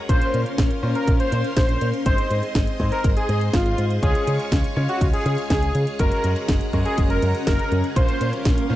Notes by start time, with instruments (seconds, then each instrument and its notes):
0.09 fingered electric bass A#1, grand piano A#3 C#4 F4 C5, string machine C#4 A#4 F5 C6, analog synth lead C5, kick, closed hi-hat
0.21 closed hi-hat
0.34 fingered electric bass A#2, closed hi-hat
0.46 closed hi-hat
0.58 fingered electric bass A#1, kick, snare, closed hi-hat
0.71 closed hi-hat
0.83 fingered electric bass A#2, grand piano A#3 C#4 F4 C5
0.95 analog synth lead A#4, closed hi-hat
1.07 fingered electric bass A#1, kick, closed hi-hat
1.20 analog synth lead C5, closed hi-hat
1.32 fingered electric bass A#2, closed hi-hat
1.44 closed hi-hat
1.57 fingered electric bass A#1, analog synth lead C5, kick, snare, closed hi-hat
1.69 closed hi-hat
1.81 fingered electric bass A#2, closed hi-hat
1.94 closed hi-hat
2.06 fingered electric bass G#1, grand piano G#3 C4 D#4 C5, string machine G#4 C5 D#5, analog synth lead C5, kick, closed hi-hat
2.18 closed hi-hat
2.30 fingered electric bass G#2, closed hi-hat
2.43 closed hi-hat
2.55 fingered electric bass G#1, kick, snare, closed hi-hat
2.67 closed hi-hat
2.80 fingered electric bass G#2, grand piano G#3 C4 D#4 C5, kick, closed hi-hat
2.92 analog synth lead A#4, closed hi-hat
3.04 fingered electric bass G#1, kick, closed hi-hat
3.17 analog synth lead G#4, closed hi-hat
3.29 fingered electric bass G#2, closed hi-hat
3.41 closed hi-hat
3.53 fingered electric bass G#1, analog synth lead F4, kick, snare, closed hi-hat
3.66 closed hi-hat
3.78 fingered electric bass G#2, closed hi-hat
3.91 closed hi-hat
4.03 fingered electric bass C#2, grand piano G#3 C#4 F4 C#5, analog synth lead G#4, string machine C#5 F5 C#6, kick, closed hi-hat
4.15 closed hi-hat
4.27 fingered electric bass C#3, closed hi-hat
4.40 closed hi-hat
4.52 fingered electric bass C#2, kick, snare, closed hi-hat
4.64 closed hi-hat
4.76 fingered electric bass C#3, grand piano G#3 C#4 F4 C#5
4.89 analog synth lead F#4, closed hi-hat
5.01 fingered electric bass C#2, kick, closed hi-hat
5.13 analog synth lead G#4, closed hi-hat
5.26 fingered electric bass C#3, closed hi-hat
5.38 closed hi-hat
5.50 fingered electric bass C#2, analog synth lead G#4, kick, snare, closed hi-hat
5.63 closed hi-hat
5.75 fingered electric bass C#3, closed hi-hat
5.87 closed hi-hat
5.99 fingered electric bass F#1, grand piano G#3 C#4 F#4 A#4, string machine C#4 F#5 A#5, analog synth lead A#4, kick, closed hi-hat
6.12 closed hi-hat
6.24 fingered electric bass F#2, closed hi-hat
6.36 closed hi-hat
6.48 fingered electric bass F#1, kick, snare, closed hi-hat
6.61 closed hi-hat
6.73 fingered electric bass F#2, grand piano G#3 C#4 F#4 A#4, kick, closed hi-hat
6.85 analog synth lead G#4, closed hi-hat
6.98 fingered electric bass F#1, kick, closed hi-hat
7.10 analog synth lead A#4, closed hi-hat
7.22 fingered electric bass F#2, closed hi-hat
7.35 closed hi-hat
7.47 fingered electric bass F#1, analog synth lead A#4, kick, snare, closed hi-hat
7.59 closed hi-hat
7.72 fingered electric bass F#2, closed hi-hat
7.84 closed hi-hat
7.96 fingered electric bass A#1, grand piano A#3 C#4 F4 C5, string machine A#4 F5 C6, analog synth lead C5, kick, closed hi-hat, riser
8.09 closed hi-hat
8.21 fingered electric bass A#2, closed hi-hat
8.33 closed hi-hat
8.45 fingered electric bass A#1, kick, snare, closed hi-hat
8.58 closed hi-hat
8.70 fingered electric bass A#2, grand piano A#3 C#4 F4 C5